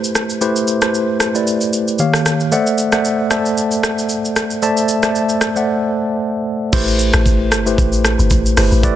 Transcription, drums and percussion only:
0.04 shaker
0.15 cross-stick, shaker
0.30 shaker
0.41 shaker
0.56 shaker
0.68 shaker
0.82 cross-stick, shaker
0.94 shaker
1.20 cross-stick, shaker
1.35 shaker
1.47 shaker
1.61 shaker
1.73 shaker
1.88 shaker
1.99 shaker
2.14 cross-stick, shaker
2.26 cross-stick, shaker
2.40 shaker
2.52 shaker
2.67 shaker
2.78 shaker
2.92 cross-stick, shaker
3.05 shaker
3.31 cross-stick, shaker
3.46 shaker
3.58 shaker
3.71 shaker
3.83 cross-stick, shaker
3.98 shaker
4.09 shaker
4.25 shaker
4.36 cross-stick, shaker
4.51 shaker
4.62 shaker
4.77 shaker
4.88 shaker
5.03 cross-stick, shaker
5.15 shaker
5.29 shaker
5.41 cross-stick, shaker
5.56 shaker
6.73 kick, crash, shaker
6.88 shaker
6.99 shaker
7.13 cross-stick, shaker
7.26 kick, shaker
7.52 cross-stick, shaker
7.67 shaker
7.78 kick, shaker
7.92 shaker
8.05 cross-stick, shaker
8.19 shaker
8.30 kick, shaker
8.46 shaker
8.57 cross-stick, open hi-hat, shaker
8.72 shaker
8.83 kick, shaker

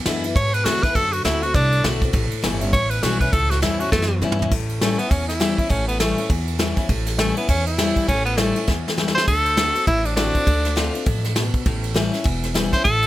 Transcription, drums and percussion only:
0.06 snare, ride
0.24 ride
0.36 kick, ride
0.54 ride
0.65 snare, ride
0.83 kick, snare, ride
0.95 kick, ride
1.13 ride
1.25 snare, ride
1.43 ride
1.54 kick, ride
1.72 ride
1.84 snare, ride
2.02 kick, snare, ride
2.14 kick, ride
2.31 ride
2.44 snare, ride
2.61 ride
2.73 kick, ride
2.91 ride
3.03 snare, ride
3.21 kick, ride
3.33 kick, ride
3.51 snare, ride
3.62 snare, ride
3.80 ride
3.92 kick, snare
4.02 snare
4.22 mid tom
4.32 mid tom
4.42 floor tom
4.52 kick, crash
4.69 ride
4.81 snare, ride
4.99 ride
5.11 kick, ride
5.29 snare, ride
5.41 snare, ride
5.58 kick, ride
5.70 kick, ride
5.89 ride
6.00 snare, ride
6.18 ride
6.30 kick, ride
6.47 ride
6.59 snare, ride
6.77 kick, snare, ride
6.89 kick, ride
7.06 snare, ride
7.19 snare, ride
7.36 ride
7.49 kick, ride
7.67 ride
7.78 snare, ride
7.96 kick, ride
8.08 kick, ride
8.26 ride
8.38 snare, ride
8.56 ride
8.68 kick, snare
8.88 snare
8.98 snare
9.08 snare
9.18 snare
9.28 kick, ride, crash
9.45 ride
9.57 snare, ride
9.75 ride
9.87 kick, ride
10.05 ride
10.17 snare, ride
10.35 kick, ride
10.47 kick, ride
10.65 snare, ride
10.77 snare, ride
10.95 ride
11.06 kick, ride
11.24 snare, ride
11.36 snare, ride
11.54 kick, ride
11.66 kick, ride
11.84 ride
11.96 snare, ride
12.13 snare, ride
12.25 kick, ride
12.43 snare, ride
12.55 snare, ride
12.73 kick, snare, ride
12.85 kick, ride
13.03 ride

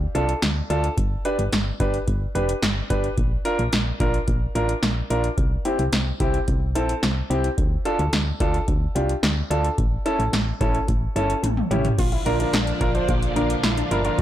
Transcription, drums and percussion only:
0.15 closed hi-hat
0.29 closed hi-hat
0.42 snare, closed hi-hat
0.70 closed hi-hat
0.84 closed hi-hat
0.98 kick, closed hi-hat
1.25 closed hi-hat
1.39 closed hi-hat
1.53 snare, closed hi-hat
1.80 kick, closed hi-hat
1.94 closed hi-hat
2.08 kick, closed hi-hat
2.35 closed hi-hat
2.49 closed hi-hat
2.63 snare, closed hi-hat
2.90 kick, closed hi-hat
3.04 closed hi-hat
3.18 kick, closed hi-hat
3.45 closed hi-hat
3.59 closed hi-hat
3.73 snare, closed hi-hat
4.00 kick, closed hi-hat
4.14 closed hi-hat
4.28 kick, closed hi-hat
4.55 closed hi-hat
4.69 closed hi-hat
4.83 snare, closed hi-hat
5.10 closed hi-hat
5.24 closed hi-hat
5.38 kick, closed hi-hat
5.65 closed hi-hat
5.79 closed hi-hat
5.93 snare, closed hi-hat
6.20 kick, closed hi-hat
6.34 closed hi-hat
6.48 kick, closed hi-hat
6.75 closed hi-hat
6.89 closed hi-hat
7.03 snare, closed hi-hat
7.31 closed hi-hat
7.44 closed hi-hat
7.58 kick, closed hi-hat
7.85 closed hi-hat
7.99 closed hi-hat
8.13 snare, closed hi-hat
8.40 kick, closed hi-hat
8.54 closed hi-hat
8.68 kick, closed hi-hat
8.96 closed hi-hat
9.09 closed hi-hat
9.23 snare, closed hi-hat
9.51 closed hi-hat
9.64 closed hi-hat
9.78 kick, closed hi-hat
10.06 closed hi-hat
10.20 closed hi-hat
10.33 snare, closed hi-hat
10.61 kick, closed hi-hat
10.75 closed hi-hat
10.88 kick, closed hi-hat
11.16 closed hi-hat
11.30 closed hi-hat
11.43 closed hi-hat, high tom
11.57 mid tom
11.71 closed hi-hat, mid tom
11.85 closed hi-hat, floor tom
11.98 kick, closed hi-hat, crash
12.12 closed hi-hat
12.26 closed hi-hat
12.40 closed hi-hat
12.53 snare, closed hi-hat
12.67 closed hi-hat
12.81 kick, closed hi-hat
12.95 closed hi-hat
13.09 kick, closed hi-hat
13.23 closed hi-hat
13.36 closed hi-hat
13.50 closed hi-hat
13.63 snare, closed hi-hat
13.77 closed hi-hat
13.91 closed hi-hat
14.05 closed hi-hat
14.19 kick, closed hi-hat

